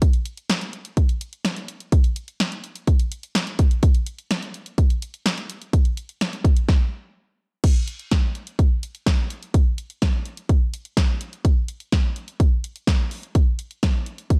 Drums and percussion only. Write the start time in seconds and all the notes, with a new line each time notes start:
0.02 kick, closed hi-hat
0.13 closed hi-hat
0.26 closed hi-hat
0.37 closed hi-hat
0.50 snare, closed hi-hat
0.61 closed hi-hat
0.73 closed hi-hat
0.85 closed hi-hat
0.97 kick, closed hi-hat
1.09 closed hi-hat
1.21 closed hi-hat
1.33 closed hi-hat
1.45 snare, closed hi-hat
1.57 closed hi-hat
1.68 closed hi-hat
1.80 closed hi-hat
1.92 kick, closed hi-hat
2.04 closed hi-hat
2.16 closed hi-hat
2.28 closed hi-hat
2.40 snare, closed hi-hat
2.52 closed hi-hat
2.64 closed hi-hat
2.76 closed hi-hat
2.87 kick, closed hi-hat
3.00 closed hi-hat
3.12 closed hi-hat
3.23 closed hi-hat
3.35 snare, closed hi-hat
3.47 closed hi-hat
3.59 kick, closed hi-hat
3.71 closed hi-hat
3.83 kick, closed hi-hat
3.95 closed hi-hat
4.06 closed hi-hat
4.19 closed hi-hat
4.31 snare, closed hi-hat
4.43 closed hi-hat
4.54 closed hi-hat
4.66 closed hi-hat
4.78 kick, closed hi-hat
4.90 closed hi-hat
5.02 closed hi-hat
5.14 closed hi-hat
5.26 snare, closed hi-hat
5.38 closed hi-hat
5.50 closed hi-hat
5.62 closed hi-hat
5.73 kick, closed hi-hat
5.85 closed hi-hat
5.97 closed hi-hat
6.09 closed hi-hat
6.21 snare, closed hi-hat
6.33 closed hi-hat
6.45 kick, closed hi-hat
6.57 closed hi-hat
6.69 kick, snare
7.64 kick, closed hi-hat, crash
7.88 closed hi-hat
7.99 closed hi-hat
8.11 kick, snare, closed hi-hat
8.35 closed hi-hat
8.47 closed hi-hat
8.59 kick, closed hi-hat
8.83 closed hi-hat
8.95 closed hi-hat
9.06 kick, snare, closed hi-hat
9.30 closed hi-hat
9.43 closed hi-hat
9.54 kick, closed hi-hat
9.78 closed hi-hat
9.90 closed hi-hat
10.02 kick, snare, closed hi-hat
10.26 closed hi-hat
10.37 closed hi-hat
10.49 kick, closed hi-hat
10.74 closed hi-hat
10.85 closed hi-hat
10.97 kick, snare, closed hi-hat
11.21 closed hi-hat
11.33 closed hi-hat
11.45 kick, closed hi-hat
11.68 closed hi-hat
11.80 closed hi-hat
11.92 kick, snare, closed hi-hat
12.16 closed hi-hat
12.28 closed hi-hat
12.40 kick, closed hi-hat
12.64 closed hi-hat
12.76 closed hi-hat
12.87 kick, snare, closed hi-hat
13.11 open hi-hat
13.23 closed hi-hat
13.35 kick, closed hi-hat
13.59 closed hi-hat
13.71 closed hi-hat
13.83 kick, snare, closed hi-hat
14.06 closed hi-hat
14.18 closed hi-hat
14.30 kick, closed hi-hat